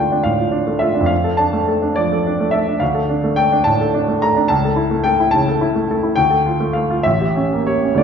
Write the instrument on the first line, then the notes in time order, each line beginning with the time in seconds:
grand piano
Already playing: D2 A3 D4 F4 G5 A5
0.12 D4
0.23 A2 F5
0.39 F4
0.51 D4
0.67 A3
0.79 F4 E5
0.95 D4
1.01 F2
1.06 F5
1.24 A4
1.37 D4 A5
1.53 A3
1.68 A4
1.82 D4
1.96 F3 D5
2.12 A4
2.27 D4
2.40 A3
2.51 A4 E5
2.68 D4
2.80 D2 F5
2.94 A4
3.09 D4
3.24 A3
3.36 A4 G5
3.52 D4
3.64 A2 A5
3.81 A4
3.94 D4
4.08 A3
4.22 A4 A#5
4.36 D4
4.48 C#2 A5
4.65 A4
4.76 E4
4.91 A3
5.04 A4 G5
5.20 E4
5.31 C#3 A5
5.48 A4
5.61 E4
5.75 A3
5.91 A4
6.03 E4
6.16 D2 G5
6.30 A4
6.46 F4
6.60 A3
6.73 A4 F5
6.90 F4
7.03 A1 E5
7.21 G4
7.36 C#4
7.53 A#3
7.67 G4 C#5
7.84 C#4
7.94 D2 A3 D4 F4 D5